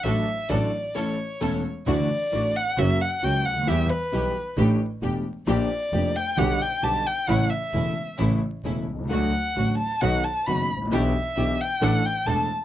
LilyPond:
<<
  \new Staff \with { instrumentName = "Violin" } { \time 4/4 \key d \major \tempo 4 = 133 e''4 d''4 cis''4. r8 | d''4. fis''8 e''8 fis''8 g''8 fis''8 | e''8 b'4. r2 | d''4. g''8 fis''8 g''8 a''8 g''8 |
fis''8 e''4. r2 | fis''4. a''8 fis''8 a''8 b''8 r8 | e''4. g''8 fis''8 g''8 a''8 r8 | }
  \new Staff \with { instrumentName = "String section" } { \time 4/4 \key d \major <d' fis' a'>8 r8 <d' fis' a'>8 r8 <cis' e' a'>8 r8 <cis' e' a'>8 r8 | <d' e' fis'>8 r8 <d' e' fis'>8 r8 <ais cis' fis'>8 r8 <ais cis' fis'>8 r8 | <b e' g'>8 r8 <b e' g'>8 r8 <a d' g'>8 r8 <a d' g'>8 r8 | <bes d' g'>8 r8 <bes d' g'>8 r8 <b d' g'>8 r8 <b d' g'>8 r8 |
<a cis' e'>8 r8 <a cis' e'>8 r8 <a cis' e'>8 r8 <a cis' e'>8 r8 | <a d' fis'>8 r8 <a d' fis'>8 r8 <b dis' fis'>8 r8 <b dis' fis'>8 r8 | <d' e' g'>8 r8 <d' e' g'>8 r8 <d' e' a'>8 r8 <d' e' a'>8 r8 | }
  \new Staff \with { instrumentName = "Grand piano" } { \clef bass \time 4/4 \key d \major <a,, a, fis a d' a'>8 r8 <a,, a, fis a d' a'>8 r8 <a,, a, e a cis' a'>8 r8 <e,, e, e a cis' a'>8 r8 | <d, d e a d' fis'>8 r8 <a,, a, e a d' fis'>8 r8 <fis, cis fis ais fis'>8 r8 <cis, cis fis ais fis'>8 r32 cis,32 d,32 ees,32 | <e, e g b g'>8 r8 <b,, b, e g b g'>8 r8 <a,, a, e a d' g'>8 r8 <e,, e, e a d' g'>8 r8 | <bes,, bes, f bes d' g'>8 r8 <f,, f, f bes d' g'>8 r8 <b,, b, d g b g'>8 r8 <b,, b, d g b g'>8 r8 |
<a,, a, cis e a e'>8 r8 <e,, e, cis e a e'>8 r8 <a,, a, cis e a e'>8 r8 <e,, e, cis e a e'>8 r32 b,,32 c,32 cis,32 | <d, d fis a fis'>8 r8 <a,, a, d fis a fis'>8 r8 <b,, b, dis fis b fis'>8 r8 <fis,, fis, dis fis b fis'>8 r32 gis,,32 a,,32 bes,,32 | <b,, b, e b d' g'>8 r8 <b,, b, e b d' g'>8 r8 <a,, a, e a d' a'>8 r8 <e,, e, e a d' a'>8 r8 | }
  \new Staff \with { instrumentName = "Double bass" } { \clef bass \time 4/4 \key d \major a,,8 r8 a,,8 r2 r8 | d,8 r8 a,,8 r8 fis,,8 r8 cis,8 d,8 | e,8 r8 b,,8 r8 a,,8 r8 e,,8 r8 | bes,,8 r8 f,,8 r8 b,,8 r8 b,,8 r8 |
a,,8 r8 e,,8 r8 a,,8 r8 e,,8 c,8 | d,8 r8 a,,8 r8 b,,8 r8 fis,,8 a,,8 | b,,8 r8 b,,8 r8 a,,8 r8 e,,8 r8 | }
>>